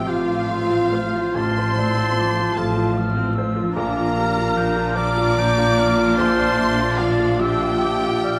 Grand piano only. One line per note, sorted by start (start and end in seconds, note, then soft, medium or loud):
0.00 1.32 A1 medium
0.00 0.06 F3 soft
0.00 0.27 F4 medium
0.00 1.39 G4 soft
0.06 0.41 F3 medium
0.27 0.62 F4 medium
0.49 0.84 F3 medium
0.70 1.06 F4 medium
0.92 1.27 C5 medium
1.15 1.49 F4 medium
1.35 3.71 A1 medium
1.57 1.89 C5 medium
1.79 1.98 D5 soft
1.98 2.29 F4 medium
2.19 2.50 F3 medium
2.39 2.70 F4 medium
2.59 2.89 F3 medium
2.77 3.08 F4 medium
2.98 3.29 F3 medium
3.17 3.48 F4 medium
3.38 3.69 C5 medium
3.56 3.76 F4 medium
3.77 6.14 A#1 medium
3.97 4.28 F4 medium
4.18 4.37 G4 medium
4.37 4.68 F4 medium
4.57 4.88 F3 medium
4.76 5.08 F4 medium
4.97 5.28 F3 medium
5.18 5.49 F4 medium
5.37 5.69 F3 medium
5.58 5.89 F4 medium
5.78 6.10 D5 medium
5.98 6.29 F4 medium
6.19 8.39 A#1 medium
6.38 6.70 D5 medium
6.58 6.78 E5 medium
6.78 7.11 F4 medium
7.00 7.32 F3 medium
7.20 7.53 F4 medium
7.39 7.73 F3 medium
7.61 7.94 F4 medium
7.83 8.15 F3 medium
8.03 8.36 F4 medium
8.24 8.39 D5 medium